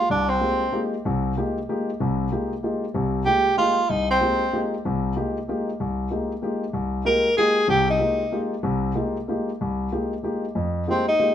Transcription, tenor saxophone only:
0.00 0.10 F4 medium
0.11 0.31 D4 medium
0.29 0.92 C4 medium
3.25 3.55 G4 medium
3.58 3.91 F4 medium
3.90 4.09 D#4 medium
4.10 4.69 C4 medium
7.06 7.35 A#4 medium
7.37 7.67 G#4 medium
7.69 7.88 G4 medium
7.90 8.49 D#4 medium
10.90 11.06 C4 medium
11.08 11.35 D#4 medium

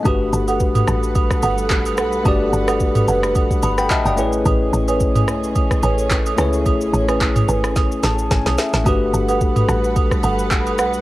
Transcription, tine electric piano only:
0.03 2.20 A3 medium
0.03 2.21 D4 medium
0.03 2.22 F#4 medium
0.03 2.22 G4 medium
0.08 2.23 B4 medium
2.23 4.13 A3 medium
2.23 4.14 D4 medium
2.23 4.14 F#4 medium
2.23 4.15 G4 medium
2.28 3.62 D5 medium
3.63 3.77 B5 medium
3.78 3.90 F#5 medium
3.78 3.90 G5 medium
3.78 3.90 B5 medium
3.91 4.42 D#5 medium
3.91 4.05 E5 medium
3.91 4.05 A5 medium
4.06 4.32 D5 medium
4.06 4.32 G5 medium
4.16 6.33 A3 medium
4.16 6.34 C#4 medium
4.16 6.34 E4 medium
4.16 6.35 G#4 medium
4.21 6.36 B4 medium
6.36 8.53 A3 medium
6.36 8.54 C#4 medium
6.36 8.55 E4 medium
6.36 8.55 G#4 medium
6.41 8.56 C#5 medium
8.04 8.29 A5 medium
8.31 8.57 G#5 medium
8.59 8.84 E5 medium
8.84 11.01 A3 medium
8.84 11.01 D4 medium
8.84 11.01 F#4 medium
8.84 11.01 G4 medium
8.89 11.01 B4 medium

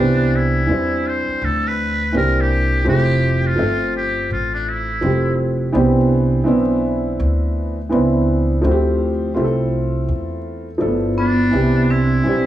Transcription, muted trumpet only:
0.00 0.37 D4 medium
0.36 1.10 E4 medium
1.08 1.46 C5 medium
1.45 1.69 A4 medium
1.68 2.15 B4 loud
2.17 2.42 A#4 medium
2.41 2.88 G4 loud
2.89 3.49 G4 loud
3.47 3.95 F4 medium
3.97 4.29 G4 medium
4.33 4.53 F4 medium
4.55 4.71 D4 medium
4.69 5.40 E4 medium
11.20 11.93 D4 medium
11.91 12.46 E4 medium

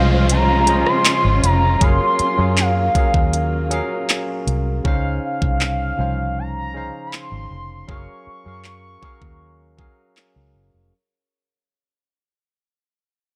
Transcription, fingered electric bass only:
0.00 0.82 C2 medium
1.25 1.41 G#1 medium
1.43 1.76 F1 medium
1.82 1.98 F#1 loud
2.20 muted fingered electric bass stroke soft
2.39 2.88 F#2 medium
2.95 muted fingered electric bass stroke soft
3.14 3.80 D#2 medium
4.47 4.80 C2 medium
4.85 5.18 C#2 medium
5.42 5.91 C2 medium
5.99 6.90 C2 medium
7.32 7.48 G#1 medium
7.51 7.84 F1 medium
7.89 8.05 F#1 loud
8.27 muted fingered electric bass stroke soft
8.46 8.95 F#2 medium
9.03 muted fingered electric bass stroke soft
9.22 9.87 D#2 medium
10.36 10.52 C#2 medium
10.55 10.71 F#1 medium
10.74 10.90 F1 medium

